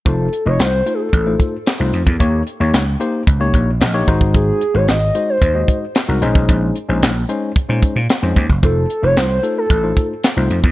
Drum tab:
HH |x-x-x-x-x-x-x-x-|x-x-x-x-x-x-x-x-|x-x-x-x-x-x-x-x-|x-x-x-x-x-x-x-x-|
CP |----x-------x---|----x-------x---|----x-------x---|----x-------x---|
SD |----o-------o---|----o-------o---|----o-------o---|----o-------o---|
BD |o-------o-o----o|o-------o-o---oo|o-------o-o----o|o-------o-o---oo|

HH |x-x-x-x-x-x-x-x-|
CP |----x-------x---|
SD |----o-------o---|
BD |o-------o-o----o|